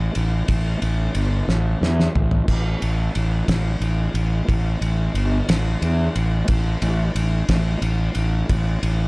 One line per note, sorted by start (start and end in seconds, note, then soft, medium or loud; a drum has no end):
0.15 0.41 A1 medium
0.15 ride medium
0.48 0.74 A1 medium
0.48 kick loud
0.48 ride loud
0.82 1.08 A1 medium
0.82 ride medium
1.15 1.41 G1 medium
1.15 ride medium
1.48 1.74 A1 medium
1.48 snare medium
1.81 2.07 E2 medium
1.81 snare medium
2.00 snare medium
2.15 2.41 A1 medium
2.15 floor tom medium
2.31 floor tom medium
2.48 2.74 A1 medium
2.48 kick loud
2.48 crash medium
2.48 splash medium
2.82 3.08 A1 medium
2.82 ride medium
3.15 3.41 A1 medium
3.15 ride medium
3.48 3.74 A1 medium
3.48 kick medium
3.48 snare loud
3.48 ride medium
3.80 4.07 A1 medium
3.80 ride medium
4.14 4.40 A1 loud
4.14 ride medium
4.48 4.74 A1 medium
4.48 kick loud
4.48 ride medium
4.81 5.07 A1 medium
4.81 ride medium
5.14 5.40 G1 medium
5.14 ride medium
5.48 5.74 A1 medium
5.48 snare loud
5.48 ride loud
5.82 6.08 E2 medium
5.82 ride medium
6.15 6.41 A1 medium
6.15 ride medium
6.48 6.74 A1 medium
6.48 kick loud
6.48 ride loud
6.82 7.08 A1 loud
6.82 ride medium
7.15 7.41 A1 medium
7.15 ride medium
7.49 7.75 A1 loud
7.49 kick medium
7.49 snare loud
7.49 ride loud
7.81 8.08 A1 loud
7.81 ride medium
8.15 8.42 A1 medium
8.15 ride medium
8.49 8.76 A1 medium
8.49 kick loud
8.49 ride medium
8.83 9.08 A1 loud
8.83 ride medium